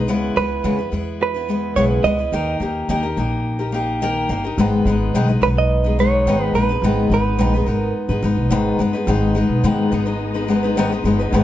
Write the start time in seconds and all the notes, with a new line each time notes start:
0.07 C#2 C#3 G#3 B3 E4 B4
0.36 C#2 G#3 B3 B4
0.64 E2 C#3 G#3 B3 E4 B4
0.78 B3 E4 B4
0.92 E2 G#3 B3 E4 B4
1.23 B4
1.34 B3 E4 B4
1.49 G#3 B3 E4 B4
1.76 B1 C#3 G#3 B3 E4 B4 C#5
2.04 C#2 G#3 B3 E4 B4 D#5
2.19 B3 E4 B4
2.32 D#2 D#3 A#3 D#4 G4 A#4
2.60 D#2 A#3 D#4 G4 A#4
2.89 D#2 D#3 A#3 D#4 G4 A#4
3.03 D#4 G4 A#4
3.17 A#1 A#3 D#4 G4 A#4
3.59 D#4 G4 A#4
3.72 A#3 D#4 G4 A#4
4.02 D#3 A#3 D#4 G4 A#4
4.29 G1 A#3 D#4 G4 A#4
4.44 D#4 G4 A#4
4.58 G#1 G#2 D#3 G#3 B3 D#4 B4
4.85 G#1 G#3 B3 D#4
4.89 B4
5.14 B1 G#2 D#3 G#3 B3 D#4 B4
5.28 G#3 B3 D#4 B4
5.42 B1 G#3 B3 D#4 B4
5.58 D#5
5.84 G#3 B3 D#4 B4
5.99 G#3 B3 D#4 B4 C#5
6.26 G#1 G#2 D#3 G#3 B3 D#4 B4
6.44 B4
6.54 A#1 G#3 B3 D#4 B4
6.69 G#3 B3 D#4 B4
6.82 G#1 G#2 D#3 G#3 B3 D#4 B4
7.10 G#1 G#3 B3 D#4 B4
7.14 B4
7.38 A#1 G#2 D#3 G#3 B3 D#4 B4
7.54 G#3 B3 D#4 B4
7.66 G#1 G#3 B3 D#4 A#4 B4
8.09 G#2 G#3 B3 D#4 B4
8.22 G#1 G#3 B3 D#4 B4
8.37 B1
8.50 G#1 G#2 D#3 G#3 B3 D#4 B4
8.79 G1 G#3 B3 D#4 B4
8.93 G#3 B3 D#4 B4
9.07 G#1 G#2 D#3 G#3 B3 D#4 B4
9.35 G#3 B3 D#4 B4
9.49 B1
9.63 G#2 D#3 G#3 B3 D#4 B4
9.92 G#1 G#3 B3 D#4 B4
10.06 G#3 B3 D#4 B4
10.34 G#3 B3 D#4 B4
10.48 G#3 B3 D#4 B4
10.63 G#3 B3 D#4 B4
10.77 G#2 D#3 G#3 B3 D#4 B4
10.92 G#3 B3 D#4 B4
11.04 G1 G#3 B3 D#4
11.08 B4
11.19 G#3 B3 D#4 B4
11.32 G#1 G#2 D#3 G#3 B3 C#4 D#4 B4